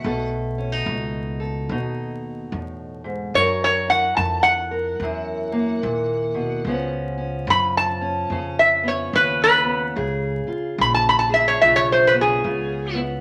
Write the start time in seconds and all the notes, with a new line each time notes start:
Already playing: A3 F#5
0.04 B1 B2 A4
0.58 C#4
0.72 D#4
0.86 C#2 B2
1.40 A4
1.69 D#2 B2 D#4
2.52 E2 A2
3.04 G#2
3.34 F#2 A#4 C#5
3.64 C#5
3.88 E4 F#5
4.17 F2 A5
4.43 F#5
4.71 A#4
5.00 E2 F#2 E4
5.52 A#3
5.82 D#2 A#2
6.34 B2
6.65 C#2 C#3 F3 B3 C#4
7.18 C#4
7.47 F#2 C#3 B5
7.77 A5
8.01 C#4
8.30 F2 C#3 C#4
8.59 E5
8.83 B3
8.88 C#5
9.13 D#2 C#3 C#4 B4
9.44 B4
9.65 B3
9.95 C#2 C#3 G#4
10.47 F4, muted upright bass stroke
10.78 A#1 C#3 B5
10.94 A5
11.09 B5
11.19 A5
11.29 G#4
11.34 E5
11.48 C#5
11.62 B1 C#3 F4 E5
11.76 C#5
11.92 C5
12.07 B4
12.13 B3
12.21 G#4
12.44 C#2 C#3 F4
12.94 B3